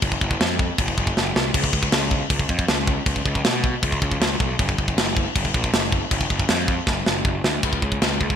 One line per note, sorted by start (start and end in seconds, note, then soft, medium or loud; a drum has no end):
0.02 0.17 F#1 medium
0.02 kick loud
0.02 crash medium
0.12 kick medium
0.21 0.36 F#1 medium
0.21 kick medium
0.31 kick medium
0.41 0.69 F2 loud
0.41 snare loud
0.41 crash medium
0.59 kick medium
0.78 0.93 F#1 medium
0.78 kick loud
0.78 crash medium
0.88 kick medium
0.98 1.12 F#1 loud
0.98 kick loud
1.07 kick medium
1.17 1.31 F#1 medium
1.17 snare medium
1.36 1.50 C2 medium
1.36 snare loud
1.54 1.69 C#2 medium
1.54 kick loud
1.54 crash loud
1.64 kick medium
1.73 1.87 C#2 loud
1.73 kick medium
1.83 kick medium
1.92 2.21 C#2 medium
1.92 snare loud
1.92 crash medium
2.11 kick medium
2.30 2.45 C#2 medium
2.30 kick loud
2.30 crash medium
2.39 kick medium
2.49 2.64 F2 loud
2.49 kick loud
2.59 kick loud
2.68 2.97 C#2 medium
2.68 snare loud
2.68 crash medium
2.87 kick medium
3.06 3.21 C#2 medium
3.06 kick loud
3.06 crash medium
3.16 kick medium
3.25 3.40 C#2 medium
3.25 kick medium
3.35 kick medium
3.45 3.74 B2 loud
3.45 snare loud
3.45 crash medium
3.64 kick medium
3.83 3.97 C#2 medium
3.83 kick loud
3.83 crash medium
3.92 kick medium
4.02 4.16 C#2 loud
4.02 kick loud
4.12 kick medium
4.20 4.35 C#2 medium
4.20 snare loud
4.20 crash medium
4.40 4.54 B1 medium
4.40 kick medium
4.59 4.74 F#1 medium
4.59 kick loud
4.59 crash medium
4.69 kick medium
4.78 4.92 F#1 medium
4.78 kick medium
4.88 kick medium
4.97 5.25 F#1 loud
4.97 snare loud
4.97 crash medium
5.17 kick medium
5.35 5.50 F#1 medium
5.35 kick loud
5.35 crash medium
5.45 kick medium
5.54 5.69 A#1 loud
5.54 kick loud
5.64 kick medium
5.73 6.02 F#1 medium
5.73 snare loud
5.73 crash medium
5.92 kick medium
6.11 6.25 F#1 loud
6.11 kick loud
6.11 crash medium
6.21 kick medium
6.30 6.45 F#1 medium
6.30 kick medium
6.40 kick medium
6.49 6.78 F2 medium
6.49 snare loud
6.49 crash medium
6.68 kick medium
6.87 7.01 F#1 medium
6.87 kick loud
6.87 snare medium
7.06 7.21 F#1 loud
7.06 snare medium
7.25 7.40 F#1 medium
7.25 kick loud
7.44 7.58 D2 medium
7.44 snare loud
7.63 7.79 C#2 medium
7.63 kick loud
7.63 china medium
7.73 kick medium
7.82 7.98 C#2 medium
7.82 kick medium
7.92 kick medium
8.02 8.17 C#2 medium
8.02 snare loud
8.02 china medium
8.21 8.36 C#2 medium
8.21 kick medium
8.30 kick medium